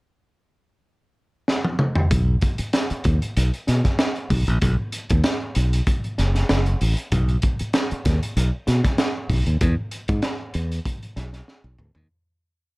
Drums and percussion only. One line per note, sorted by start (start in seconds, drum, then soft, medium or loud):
1.48 snare medium
1.65 high tom medium
1.79 mid tom medium
1.96 floor tom loud
2.11 kick loud
2.11 closed hi-hat medium
2.41 kick medium
2.41 closed hi-hat medium
2.58 closed hi-hat medium
2.73 snare loud
2.73 closed hi-hat loud
2.90 closed hi-hat soft
3.04 kick medium
3.04 closed hi-hat medium
3.22 closed hi-hat medium
3.37 closed hi-hat medium
3.54 closed hi-hat soft
3.67 snare soft
3.67 closed hi-hat medium
3.84 kick medium
3.84 snare soft
3.84 closed hi-hat soft
3.99 snare loud
3.99 closed hi-hat medium
4.16 closed hi-hat soft
4.30 kick medium
4.30 open hi-hat medium
4.47 closed hi-hat soft
4.62 kick loud
4.62 closed hi-hat medium
4.92 closed hi-hat medium
5.10 kick loud
5.10 closed hi-hat medium
5.24 snare loud
5.24 closed hi-hat medium
5.55 closed hi-hat medium
5.73 closed hi-hat soft
5.87 kick loud
5.87 closed hi-hat medium
6.04 closed hi-hat soft
6.18 snare soft
6.18 closed hi-hat medium
6.35 snare soft
6.35 closed hi-hat soft
6.49 snare loud
6.49 closed hi-hat medium
6.66 closed hi-hat soft
6.81 open hi-hat medium
6.97 closed hi-hat soft
7.12 kick loud
7.12 closed hi-hat medium
7.29 closed hi-hat soft
7.42 kick medium
7.42 closed hi-hat medium
7.59 closed hi-hat medium
7.73 snare loud
7.73 closed hi-hat medium
7.91 closed hi-hat soft
8.05 kick medium
8.05 snare soft
8.05 closed hi-hat medium
8.23 closed hi-hat medium
8.37 closed hi-hat medium
8.67 snare soft
8.67 closed hi-hat medium
8.84 kick medium
8.84 snare soft
8.84 closed hi-hat soft
8.98 snare loud
8.98 closed hi-hat medium
9.30 kick medium
9.30 open hi-hat medium
9.46 closed hi-hat soft
9.61 kick loud
9.61 closed hi-hat loud
9.91 closed hi-hat medium
10.08 kick loud
10.08 closed hi-hat medium
10.22 snare loud
10.22 closed hi-hat medium
10.54 closed hi-hat medium
10.72 closed hi-hat medium
10.86 kick loud
10.86 closed hi-hat medium
11.03 closed hi-hat soft
11.16 snare soft
11.16 closed hi-hat medium
11.33 snare soft
11.33 closed hi-hat soft
11.48 snare soft
11.79 mid tom medium
11.95 floor tom medium